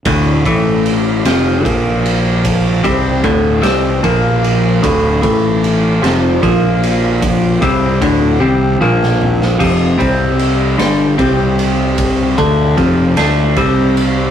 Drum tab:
CC |------------|------------|------------|------------|
RD |x-x-x-x-x-x-|x-x-x-x-x-x-|x-x-x-x-x-x-|x-x-x-------|
SD |------o-----|------o-----|------o-----|---------o-o|
T1 |------------|------------|------------|------o-----|
T2 |------------|------------|------------|--------o---|
FT |------------|------------|------------|----------o-|
BD |o-o-----o---|o-o-o---o---|o-o-----o---|o-o-o-------|

CC |x-----------|------------|
RD |--x-x-x-x-x-|x-x-x-x-x-x-|
SD |------o-----|------o-----|
T1 |------------|------------|
T2 |------------|------------|
FT |------------|------------|
BD |o-o-----o---|o-o-o---o---|